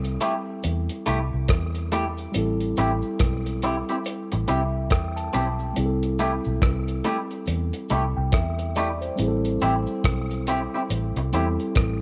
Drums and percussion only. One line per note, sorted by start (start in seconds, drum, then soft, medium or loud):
0.04 closed hi-hat soft
0.04 cabasa soft
0.21 closed hi-hat medium
0.21 cabasa medium
0.63 closed hi-hat medium
0.63 cabasa medium
0.90 closed hi-hat soft
1.06 closed hi-hat medium
1.06 cabasa soft
1.48 kick loud
1.48 cross-stick loud
1.48 closed hi-hat medium
1.48 cabasa medium
1.75 closed hi-hat soft
1.92 closed hi-hat medium
1.92 cabasa medium
2.17 closed hi-hat soft
2.17 cabasa soft
2.34 closed hi-hat medium
2.34 cabasa medium
2.61 closed hi-hat soft
2.76 closed hi-hat medium
2.76 cabasa soft
3.02 cabasa medium
3.19 kick loud
3.19 cross-stick loud
3.19 closed hi-hat medium
3.46 closed hi-hat soft
3.46 cabasa soft
3.62 closed hi-hat medium
3.62 cabasa medium
3.89 closed hi-hat soft
4.04 closed hi-hat medium
4.04 cabasa medium
4.32 closed hi-hat medium
4.48 closed hi-hat medium
4.48 cabasa soft
4.90 kick loud
4.90 cross-stick loud
4.90 closed hi-hat medium
4.90 cabasa medium
5.17 closed hi-hat soft
5.33 closed hi-hat medium
5.33 cabasa medium
5.59 cabasa soft
5.76 closed hi-hat medium
5.76 cabasa medium
6.03 closed hi-hat soft
6.18 closed hi-hat medium
6.18 cabasa soft
6.44 cabasa medium
6.62 kick loud
6.62 cross-stick loud
6.62 closed hi-hat medium
6.88 closed hi-hat soft
6.88 cabasa soft
7.04 closed hi-hat medium
7.04 cabasa medium
7.31 closed hi-hat soft
7.46 closed hi-hat medium
7.46 cabasa medium
7.73 closed hi-hat soft
7.89 closed hi-hat medium
7.89 cabasa soft
8.32 kick loud
8.32 cross-stick loud
8.32 closed hi-hat medium
8.32 cabasa medium
8.59 closed hi-hat soft
8.75 closed hi-hat medium
8.75 cabasa medium
9.01 closed hi-hat soft
9.01 cabasa soft
9.17 closed hi-hat medium
9.17 cabasa medium
9.45 closed hi-hat soft
9.60 closed hi-hat medium
9.60 cabasa soft
9.87 cabasa medium
10.04 kick loud
10.04 cross-stick loud
10.04 closed hi-hat medium
10.30 closed hi-hat soft
10.30 cabasa soft
10.47 closed hi-hat medium
10.47 cabasa medium
10.90 closed hi-hat medium
10.90 cabasa medium
11.16 closed hi-hat soft
11.33 closed hi-hat medium
11.33 cabasa soft
11.60 closed hi-hat soft
11.75 kick loud
11.75 cross-stick loud
11.75 closed hi-hat medium
11.75 cabasa medium